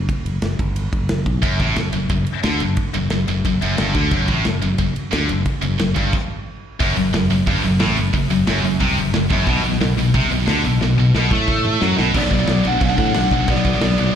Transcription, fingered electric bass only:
0.25 0.41 F#1 medium
0.42 0.58 F#1 medium
0.59 0.91 G1 medium
0.93 1.24 F#1 medium
1.26 1.42 B1 medium
1.43 1.59 F#1 medium
1.60 1.75 A1 medium
1.77 1.92 F#1 medium
1.94 2.09 F#1 medium
2.10 2.26 F#1 medium
2.44 2.60 D2 medium
2.60 2.76 F#1 medium
2.95 3.10 F#1 medium
3.11 3.27 F#1 medium
3.28 3.44 F#1 medium
3.45 3.60 F#1 medium
3.63 3.78 F#1 loud
3.80 3.95 G1 medium
3.95 4.11 D2 medium
4.12 4.27 F#1 loud
4.29 4.44 A1 medium
4.47 4.62 F#1 medium
4.64 4.78 F#1 medium
4.79 4.94 F#1 medium
5.13 5.28 D2 medium
5.30 5.45 F#1 medium
5.63 5.79 F#1 medium
5.80 5.96 F#1 medium
5.97 6.12 G1 medium
6.80 6.96 F#1 loud
6.97 7.13 F#1 medium
7.15 7.30 F#1 medium
7.31 7.46 F#1 medium
7.47 7.63 G1 medium
7.65 7.80 F#1 medium
7.81 7.97 A1 loud
7.97 8.13 F#1 medium
8.14 8.29 F#1 medium
8.31 8.46 F#1 medium
8.47 8.63 F#1 medium
8.63 8.79 F#1 medium
8.81 8.97 C2 loud
8.98 9.13 F#1 medium
9.15 9.30 F#1 medium
9.31 9.46 F#1 loud
9.47 9.63 B1 loud
9.64 9.80 B1 medium
9.81 9.96 B1 medium
9.97 10.13 B1 medium
10.15 10.30 C2 loud
10.31 10.47 B1 medium
10.48 10.63 D2 loud
10.65 10.81 B1 medium
10.82 10.97 B1 medium
10.97 11.13 B1 medium
11.15 11.30 B1 medium
11.31 11.78 A2 medium
11.82 11.97 F#2 loud
11.99 12.14 B1 loud
12.15 12.28 B1 loud
12.31 12.45 B1 medium
12.48 12.62 B1 medium
12.65 12.79 B1 medium
12.81 12.95 B1 medium
12.98 13.12 A2 medium
13.16 13.29 B1 loud
13.31 13.45 B1 loud
13.48 13.75 B1 loud
13.82 13.96 B1 medium
13.99 14.12 B1 loud

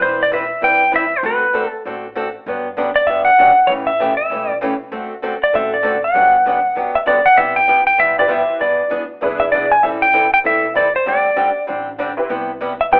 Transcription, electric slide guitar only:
0.02 0.21 C5 loud
0.23 0.33 D5 loud
0.34 0.64 E5 medium
0.64 0.92 G5 loud
0.96 1.14 E5 medium
1.14 1.25 C5 medium
1.26 1.69 B4 medium
1.69 1.82 A4 medium
2.96 3.08 D5 medium
3.07 3.24 E5 medium
3.25 3.70 F#5 loud
3.67 3.73 C#5 medium
3.87 4.16 E5 loud
4.17 4.58 E5 medium
5.44 5.55 D5 medium
5.55 5.74 E5 medium
5.74 6.05 D5 medium
6.04 6.95 F#5 medium
6.95 7.00 E5 medium
7.07 7.27 D5 medium
7.26 7.38 F#5 medium
7.38 7.57 E5 loud
7.56 7.86 G5 loud
7.87 7.99 G5 medium
8.00 8.19 E5 medium
8.19 8.31 D5 medium
8.32 8.63 E5 medium
8.61 8.90 D5 medium
9.40 9.45 E5 medium
9.52 9.72 D5 medium
9.72 9.84 G#5 loud
9.83 9.88 E5 loud
10.02 10.32 G5 loud
10.34 10.39 G5 loud
10.46 10.76 E5 medium
10.77 10.95 D5 medium
10.96 11.08 C5 medium
11.08 11.65 D5 medium
12.81 12.86 E5 medium
12.93 13.00 G5 medium

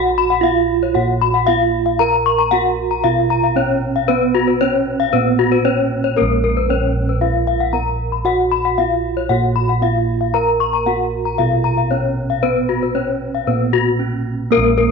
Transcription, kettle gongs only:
0.00 0.93 A#1 medium
0.00 1.43 F#4 medium
0.43 0.51 B3 soft
0.95 2.48 A#2 medium
1.48 1.56 B3 medium
2.00 3.52 A#4 medium
2.52 2.60 B3 soft
3.04 4.56 B2 medium
3.56 3.64 B3 soft
4.08 5.61 B4 medium
4.61 4.69 B3 soft
5.13 6.65 A#2 medium
5.64 5.72 B3 soft
6.17 7.69 A#4 medium
6.22 9.28 A#1 loud
6.69 6.77 B3 soft
7.73 7.81 B3 soft
8.25 9.78 F#4 medium
8.78 8.86 B3 soft
9.30 10.82 A#2 medium
9.82 9.90 B3 soft
10.34 11.87 A#4 medium
10.86 10.94 B3 soft
11.39 12.91 B2 medium
11.91 11.99 B3 soft
12.43 13.95 B4 medium
12.95 13.03 B3 soft
13.47 14.91 A#2 medium
14.00 14.08 B3 soft
14.52 14.91 A#4 medium
14.57 14.91 A#1 loud

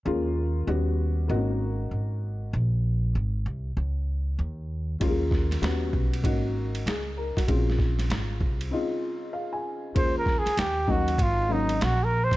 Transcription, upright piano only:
0.05 0.67 G#3 medium
0.05 0.68 A#3 medium
0.05 0.66 C#4 medium
0.05 0.68 F4 medium
0.67 1.29 G3 medium
0.67 1.29 B3 medium
0.67 1.30 C#4 medium
0.67 1.29 F#4 medium
1.28 2.50 A#3 medium
1.28 1.37 C4 soft
1.28 2.51 D#4 medium
1.28 2.51 F#4 medium
1.35 2.54 C#4 medium
5.00 5.09 G3 medium
5.00 5.62 A#3 medium
5.00 5.61 C#4 medium
5.00 5.63 F4 medium
5.07 5.66 G#3 medium
5.62 6.24 G3 medium
5.62 6.24 B3 medium
5.62 6.22 C#4 medium
5.62 6.24 F#4 medium
6.23 7.45 A#3 medium
6.23 7.45 C#4 medium
6.23 7.46 D#4 medium
6.23 6.86 F#4 medium
6.87 7.16 G#4 medium
7.17 7.36 A#4 medium
7.37 7.66 F#4 medium
7.47 8.69 G#3 medium
7.47 8.69 C4 medium
7.47 8.70 C#4 medium
7.47 8.70 F4 medium
8.71 9.93 C#3 medium
8.71 9.93 G#3 medium
8.71 9.93 C4 medium
8.71 9.93 D#4 medium
8.71 9.94 F4 medium
9.33 9.52 F5 medium
9.53 9.92 G#5 medium
9.94 10.42 G#3 medium
9.94 10.42 A#3 medium
9.94 10.42 C#4 medium
9.94 10.42 F4 medium
10.87 11.12 F#3 medium
10.87 11.12 A#3 medium
10.87 11.12 C#4 medium
10.87 11.13 D#4 medium
11.49 11.89 F#3 medium
11.49 11.89 A#3 medium
11.49 11.89 C#4 medium
11.49 11.89 D#4 medium

